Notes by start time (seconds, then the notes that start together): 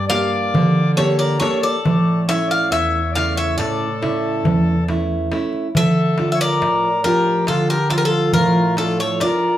Already playing: G2
0.08 A#3 D4 G4 D5 F5, darbuka tek
0.33 darbuka tek
0.54 D3, darbuka dum
0.77 darbuka tek
0.97 A#3 D4 G4 A4 C#5, darbuka tek
1.19 A#4 D5
1.40 A#3 D4 G4 A4 C#5, darbuka tek
1.60 A4 D5
1.85 A2, darbuka dum
2.27 A3 C#4 E4 C#5 E5, darbuka tek
2.47 D5 F5, darbuka tek
2.70 E2 C#5 E5, darbuka tek
3.12 C#3 A3 E4 D5 F5
3.17 darbuka tek
3.36 C#5 E5
3.58 A2 A4 D5, darbuka tek
4.02 C#3 A3 E4, darbuka tek
4.45 E2, darbuka dum
4.89 A3 C#4 E4, darbuka tek
5.32 A3 C#4 E4, darbuka tek
5.53 darbuka tek
5.75 D3 A4 E5, darbuka dum
6.18 F3 D4 F4, darbuka tek
6.32 C#5 E5
6.40 A#4 D5
6.62 A2, darbuka tek
7.04 F3 D4 F4 G4 A#4, darbuka tek
7.25 darbuka tek
7.47 D3 F4 A4, darbuka tek
7.69 G4 A#4
7.90 F3 D4 F4 A4, darbuka tek
7.97 G4 A#4
8.05 F4 A4
8.33 A2 F4 A#4, darbuka dum
8.77 F3 D4 F4 A4, darbuka tek
9.00 A4 C#5
9.20 D4 F4 A#4 D5, darbuka tek